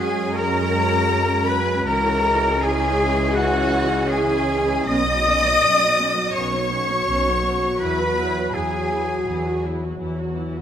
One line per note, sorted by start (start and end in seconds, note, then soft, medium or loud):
0.00 1.82 F#2 medium
0.00 1.70 G#3 medium
0.00 1.82 G#3 medium
0.00 1.83 C#4 medium
0.00 2.57 F#4 medium
0.00 0.35 G#4 medium
0.00 0.38 G#4 medium
0.00 0.34 G#5 medium
0.00 0.35 G#5 medium
0.00 0.37 G#5 medium
0.35 1.46 A#4 loud
0.35 1.48 A#4 loud
0.35 1.45 A#5 loud
0.35 1.50 A#5 loud
0.35 1.48 A#5 loud
1.48 1.86 B4 loud
1.48 1.89 B4 medium
1.48 1.86 B5 medium
1.85 4.83 C#2 medium
1.85 4.84 E3 medium
1.85 4.83 G#3 medium
1.85 4.84 C#4 medium
1.85 2.60 A#4 loud
1.85 2.65 A#4 medium
1.85 2.60 A#5 medium
1.85 2.64 A#5 loud
2.62 4.87 E4 medium
2.62 3.36 G#4 loud
2.62 3.36 G#4 medium
2.62 3.35 G#5 medium
2.62 3.36 G#5 medium
2.62 3.38 G#5 loud
3.34 4.10 F#4 medium
3.34 4.09 F#4 loud
3.34 4.07 F#5 medium
3.34 4.09 F#5 medium
3.34 4.12 F#5 medium
4.09 4.86 G#4 medium
4.09 4.87 G#4 loud
4.09 4.87 G#5 medium
4.09 4.87 G#5 loud
4.09 4.87 G#5 medium
4.86 5.53 B1 medium
4.86 10.55 F#3 medium
4.86 5.06 B3 medium
4.86 5.06 C#4 medium
4.86 10.55 F#4 medium
4.86 6.05 D#5 loud
4.86 6.31 D#5 loud
4.86 6.34 D#6 loud
4.86 6.05 D#6 loud
4.86 6.32 D#6 loud
5.09 5.26 F#3 medium
5.09 5.27 B3 medium
5.28 5.44 B3 medium
5.28 5.45 C#4 medium
5.46 5.63 F#3 medium
5.46 5.63 B3 medium
5.62 6.26 B1 medium
5.62 5.80 B3 medium
5.62 5.80 C#4 medium
5.83 5.99 F#3 medium
5.83 5.99 B3 medium
6.00 6.17 B3 medium
6.00 6.17 C#4 medium
6.18 6.35 F#3 medium
6.18 6.35 B3 medium
6.34 6.98 B1 medium
6.34 6.52 B3 medium
6.34 6.52 C#4 medium
6.34 7.80 C#5 loud
6.34 7.76 C#5 medium
6.34 7.80 C#6 medium
6.34 7.76 C#6 medium
6.34 7.81 C#6 medium
6.55 6.72 F#3 medium
6.55 6.71 B3 medium
6.72 6.89 B3 medium
6.72 6.90 C#4 medium
6.91 7.08 F#3 medium
6.91 7.08 B3 medium
7.07 7.71 B1 medium
7.07 7.25 B3 medium
7.07 7.25 C#4 medium
7.28 7.45 F#3 medium
7.28 7.44 B3 medium
7.46 7.63 B3 medium
7.46 7.63 C#4 medium
7.64 7.81 F#3 medium
7.64 7.81 B3 medium
7.79 8.45 E2 medium
7.79 7.98 E3 medium
7.79 7.98 E4 medium
7.79 8.56 B4 medium
7.79 8.52 B4 medium
7.79 8.53 B5 medium
7.79 8.55 B5 medium
7.79 8.54 B5 medium
8.01 8.18 F#3 medium
8.01 8.18 F#4 medium
8.19 8.36 E3 medium
8.19 8.36 E4 medium
8.37 8.54 F#3 medium
8.37 8.54 F#4 medium
8.53 9.18 E2 medium
8.53 8.71 E3 medium
8.53 8.71 E4 medium
8.53 9.60 G#4 medium
8.53 9.63 G#4 medium
8.53 9.61 G#5 medium
8.53 9.63 G#5 medium
8.73 8.90 F#3 soft
8.73 8.90 F#4 soft
8.91 9.09 E3 medium
8.91 9.09 E4 soft
9.08 9.27 F#3 medium
9.08 9.27 F#4 soft
9.27 9.91 E2 medium
9.27 9.44 E3 medium
9.27 9.44 E4 medium
9.46 9.64 F#3 soft
9.46 9.64 F#4 medium
9.64 9.82 E3 medium
9.64 9.82 E4 soft
9.83 10.00 F#3 soft
9.83 10.00 F#4 soft
10.00 10.62 E2 medium
10.00 10.16 E3 soft
10.00 10.17 E4 medium
10.18 10.36 F#3 soft
10.18 10.36 F#4 soft
10.37 10.54 E3 soft
10.37 10.54 E4 medium
10.56 10.62 F#3 soft
10.56 10.62 F#4 soft